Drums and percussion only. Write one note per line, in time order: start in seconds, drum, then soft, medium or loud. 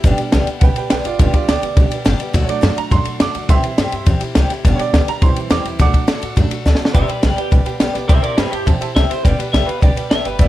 0.04 kick loud
0.04 ride medium
0.18 ride medium
0.32 snare loud
0.32 ride medium
0.47 ride medium
0.61 kick loud
0.61 ride medium
0.76 ride medium
0.90 snare loud
0.90 ride loud
1.05 ride medium
1.19 kick loud
1.19 ride medium
1.34 kick medium
1.34 ride medium
1.49 snare loud
1.49 ride medium
1.63 ride medium
1.77 kick loud
1.77 ride medium
1.91 ride medium
2.06 snare loud
2.06 ride medium
2.20 ride medium
2.34 kick loud
2.34 ride medium
2.49 ride medium
2.63 snare loud
2.63 ride medium
2.78 ride medium
2.91 kick loud
2.91 ride medium
3.05 ride medium
3.20 snare loud
3.20 ride medium
3.35 ride medium
3.49 kick loud
3.49 ride medium
3.64 ride medium
3.78 snare loud
3.78 ride medium
3.92 ride medium
4.06 kick loud
4.06 ride medium
4.21 ride medium
4.35 snare loud
4.35 ride loud
4.50 snare soft
4.50 ride medium
4.65 kick loud
4.65 ride loud
4.79 ride medium
4.94 snare loud
4.94 ride medium
5.08 ride medium
5.22 kick loud
5.22 ride medium
5.36 ride medium
5.51 snare loud
5.51 ride medium
5.65 ride medium
5.80 kick loud
5.80 ride medium
5.94 kick medium
5.94 ride medium
6.08 snare loud
6.08 ride medium
6.23 ride medium
6.37 kick loud
6.37 ride medium
6.51 ride medium
6.66 snare medium
6.75 snare medium
6.85 snare loud
6.94 kick loud
6.94 ride medium
7.09 ride medium
7.23 snare loud
7.23 ride medium
7.38 ride medium
7.52 kick loud
7.52 ride medium
7.66 ride medium
7.80 snare loud
7.80 ride medium
7.95 snare soft
7.95 ride medium
8.09 kick loud
8.09 ride medium
8.24 ride medium
8.38 snare loud
8.38 ride medium
8.53 ride medium
8.67 kick loud
8.67 ride loud
8.82 ride medium
8.96 snare loud
8.96 ride medium
9.11 snare soft
9.11 ride medium
9.25 kick loud
9.25 ride loud
9.40 ride medium
9.54 snare loud
9.54 ride medium
9.69 ride medium
9.82 kick loud
9.82 ride medium
9.97 ride medium
10.11 snare loud
10.11 ride medium
10.25 ride medium
10.39 kick loud
10.39 ride medium